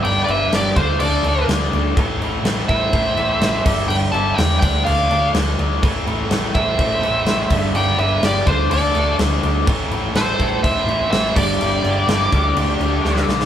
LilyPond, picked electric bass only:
\new Staff \with { instrumentName = "Picked electric bass" } { \clef bass \time 4/4 \key a \minor \tempo 4 = 125 g,,8 g,,8 g,,8 d,8 d,8 d,8 d,8 d,8 | a,,8 a,,8 a,,8 a,,8 a,,8 a,,8 a,,8 g,,8 | g,,8 g,,8 e,8 d,8 d,8 d,8 d,8 d,8 | a,,8 a,,8 a,,8 a,,8 a,,8 a,,8 a,,8 g,,8 |
g,,8 g,,8 g,,8 d,8 d,8 d,8 d,8 d,8 | a,,8 a,,8 a,,8 a,,8 a,,8 a,,8 a,,8 g,,8 | g,,8 g,,8 g,,8 d,8 d,8 d,8 d,8 b,,8 | }